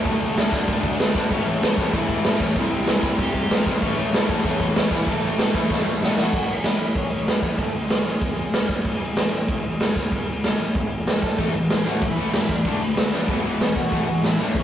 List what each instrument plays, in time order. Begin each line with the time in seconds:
0.05 picked electric bass D2, distorted electric guitar D3 A3 D4 F#4, lead electric guitar A3 A4, kick, crash
0.20 picked electric bass D2
0.35 picked electric bass D2, distorted electric guitar D3 A3 D4 F#4, lead electric guitar E4 E5, snare, crash
0.52 picked electric bass D2, distorted electric guitar D3 A3 D4 F#4, lead electric guitar D4 D5, kick
0.67 picked electric bass D2, distorted electric guitar D3 A3 D4 F#4, kick, crash
0.83 picked electric bass D2, kick
0.98 picked electric bass D2, distorted electric guitar D3 A3 D4 F#4, snare, crash
1.14 picked electric bass B1, distorted electric guitar D3 A3 D4 F#4, lead electric guitar B3 B4, kick
1.29 picked electric bass A1, distorted electric guitar A2 E3 A3 C#4 E4, lead electric guitar C#4 C#5, kick, crash
1.46 picked electric bass A1
1.61 picked electric bass A1, distorted electric guitar A2 E3 A3 C#4 E4, snare, crash
1.77 picked electric bass A1, distorted electric guitar A2 E3 A3 C#4 E4, kick
1.91 picked electric bass A1, distorted electric guitar A2 E3 A3, lead electric guitar E4 E5, kick, crash
1.95 distorted electric guitar C#4 E4
2.08 picked electric bass A1, kick
2.24 picked electric bass A1, distorted electric guitar A2 E3 A3 C#4 E4, snare, crash
2.40 picked electric bass A1, distorted electric guitar A2 E3 A3 C#4 E4, lead electric guitar C#4 C#5, kick
2.55 picked electric bass C2, distorted electric guitar C3 E3 G3 C4 E4, lead electric guitar E4 E5, kick, crash
2.72 picked electric bass C2
2.87 picked electric bass C2, distorted electric guitar C3 E3 G3 C4 E4, snare, crash
3.03 picked electric bass C2, distorted electric guitar C3 E3 G3 C4 E4, kick
3.18 picked electric bass C2, distorted electric guitar C3 E3 G3 C4 E4, lead electric guitar G4 G5, kick, crash
3.35 picked electric bass C2, kick
3.50 picked electric bass C2, distorted electric guitar C3 E3 G3 C4 E4, snare, crash
3.66 picked electric bass C2, distorted electric guitar C3 E3 G3 C4 E4, lead electric guitar B3 B4, kick
3.82 picked electric bass A1, distorted electric guitar A2 E3 A3 C#4 E4, lead electric guitar C#4 C#5, kick, crash
3.98 picked electric bass A1, lead electric guitar C#4 C#5
4.12 picked electric bass A1, distorted electric guitar A2 E3 A3 C#4 E4, lead electric guitar E4 E5, snare, crash
4.27 picked electric bass A1, distorted electric guitar A2 E3 A3 C#4 E4, lead electric guitar B3 B4, kick
4.42 picked electric bass A1, distorted electric guitar A2 E3 A3 C#4 E4, lead electric guitar C#4 C#5, kick, crash
4.60 picked electric bass A1, kick
4.75 picked electric bass A1, distorted electric guitar A2 E3 A3 C#4 E4, lead electric guitar C#4 C#5, snare, crash
4.91 picked electric bass A1, distorted electric guitar A2 E3 A3 C#4 E4, lead electric guitar E4 E5, kick
5.07 picked electric bass A1, distorted electric guitar A2 E3 A3 C#4 E4, lead electric guitar A3 A4, kick, crash
5.24 picked electric bass A1
5.37 picked electric bass A1, distorted electric guitar A2 E3 A3 C#4 E4, snare, crash
5.54 picked electric bass A1, distorted electric guitar A2 E3 A3 C#4 E4, kick
5.69 picked electric bass A1, distorted electric guitar A2 E3 A3 C#4 E4, kick, snare
5.86 picked electric bass A1
6.01 picked electric bass A1, distorted electric guitar A2 E3 A3 C#4 E4, snare
6.17 picked electric bass A1, distorted electric guitar A2 E3 A3 C#4 E4, lead electric guitar F#4 F#5, snare
6.33 picked electric bass A1, kick, crash
6.63 picked electric bass A1, lead electric guitar E4 E5, snare, crash
6.80 picked electric bass A1
6.95 picked electric bass A1, lead electric guitar C#4 C#5, kick, crash
7.10 picked electric bass A1, lead electric guitar C#4 C#5
7.26 picked electric bass F#1, lead electric guitar B3 B4, snare, crash
7.43 picked electric bass E2, kick
7.56 picked electric bass D2, lead electric guitar A3 A4, kick, crash
7.74 picked electric bass D2, lead electric guitar G#3 G#4
7.90 picked electric bass D2, snare, crash
8.05 picked electric bass A1
8.21 picked electric bass E1, kick, crash
8.37 picked electric bass E1
8.52 picked electric bass E1, snare, crash
8.69 picked electric bass B1, kick
8.85 picked electric bass A1, kick, crash
9.16 picked electric bass A1, snare, crash
9.32 picked electric bass A1
9.48 picked electric bass A1, kick, crash
9.63 picked electric bass A1
9.79 picked electric bass F#1, snare, crash
9.96 picked electric bass C#2, kick
10.12 picked electric bass D2, kick, crash
10.29 picked electric bass D2
10.43 picked electric bass D2, snare, crash
10.61 picked electric bass A1
10.75 picked electric bass E1, kick, crash
10.91 picked electric bass E1
11.06 picked electric bass E1, snare, crash
11.22 picked electric bass B1, lead electric guitar A4 A5, kick
11.38 picked electric bass A1, distorted electric guitar A2 E3 A3, kick, crash
11.55 distorted electric guitar A2 E3
11.70 picked electric bass A1, distorted electric guitar A2 E3, lead electric guitar G#4 G#5, snare, crash
11.85 picked electric bass A1, distorted electric guitar A2 E3 A3, lead electric guitar F#4 F#5
12.01 picked electric bass A1, distorted electric guitar A2 E3, lead electric guitar E5, kick, crash
12.06 lead electric guitar E4
12.16 picked electric bass A1, distorted electric guitar A2 E3 A3, lead electric guitar E5
12.21 lead electric guitar E4
12.33 picked electric bass F#1, distorted electric guitar A2 E3, lead electric guitar E4 E5, snare, crash
12.49 picked electric bass E2, distorted electric guitar A2 E3, lead electric guitar D4 D5, kick
12.65 picked electric bass D2, distorted electric guitar D3 A3 D4, kick, crash
12.81 picked electric bass D2, distorted electric guitar D3 A3, lead electric guitar B3 B4
12.96 picked electric bass D2, distorted electric guitar D3 A3, snare, crash
13.13 picked electric bass A1, distorted electric guitar D3 A3 D4
13.27 picked electric bass E1, distorted electric guitar E2 B2 E3 G#3 B3, kick, crash
13.44 picked electric bass E1, distorted electric guitar E2 B2 E3 G#3 B3
13.60 picked electric bass E1, distorted electric guitar E2 B2 E3 G#3, snare, crash
13.76 picked electric bass B1, distorted electric guitar E2 B2 E3 G#3, lead electric guitar F#4 F#5, kick
13.92 picked electric bass A1, distorted electric guitar A2 E3 A3, kick, crash
14.05 distorted electric guitar A2 E3, lead electric guitar F#4 F#5
14.21 picked electric bass A1, distorted electric guitar A2 E3, lead electric guitar E4 E5, snare, crash
14.38 picked electric bass A1, distorted electric guitar A2 E3 A3, lead electric guitar D5
14.43 lead electric guitar D4
14.54 picked electric bass A1, distorted electric guitar A2 E3, lead electric guitar C#4 C#5, kick, crash